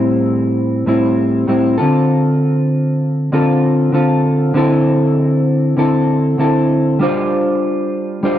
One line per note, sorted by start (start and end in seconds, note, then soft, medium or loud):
0.00 0.85 A2 medium
0.00 0.86 G3 medium
0.00 0.87 C4 medium
0.00 0.87 E4 medium
0.86 1.46 A2 medium
0.86 1.47 G3 medium
0.86 1.48 C4 medium
0.86 1.48 E4 medium
1.47 1.78 A2 medium
1.47 1.78 G3 medium
1.47 1.79 C4 medium
1.47 1.79 E4 medium
1.78 3.32 D3 medium
1.78 3.32 C4 medium
1.78 3.33 F4 medium
1.78 3.34 A4 medium
3.32 3.92 D3 medium
3.32 3.93 C4 medium
3.32 3.94 F4 medium
3.32 3.94 A4 medium
3.92 4.54 D3 medium
3.92 4.55 C4 medium
3.92 4.56 F4 medium
3.92 4.57 A4 medium
4.54 5.76 D3 medium
4.54 5.77 C4 medium
4.54 5.77 E4 medium
4.54 5.78 A4 medium
5.77 6.38 D3 medium
5.77 6.39 C4 medium
5.77 6.38 E4 medium
5.77 6.39 A4 medium
6.38 7.06 D3 medium
6.38 7.00 C4 medium
6.38 7.00 E4 medium
6.38 7.01 A4 medium
6.99 8.22 G3 medium
6.99 8.22 D4 medium
6.99 8.23 F4 medium
6.99 8.25 C5 medium
8.23 8.39 G3 medium
8.23 8.39 D4 medium
8.23 8.39 F4 medium
8.23 8.39 C5 medium